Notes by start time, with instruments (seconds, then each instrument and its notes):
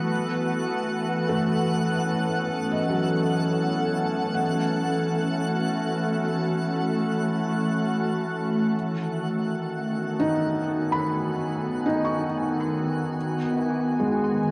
Already playing: ambient pad E3 F#3 B3 F#4 B4, synth drone A3 A4, synth texture F#5
0.67 ambient pad C#4
1.29 felt piano A3
1.81 ambient pad A4
2.72 felt piano D#5
2.89 felt piano F#3
4.34 felt piano F#5
4.87 ambient pad A3
4.98 ambient pad F#4
8.74 ambient pad D#3
9.73 ambient pad B3
10.20 felt piano D#4
10.43 ambient pad G#5
10.92 felt piano B5
11.86 felt piano D#4
12.05 felt piano C#6
13.15 synth drone B3 G#4
14.00 felt piano G#3
14.24 ambient pad C#4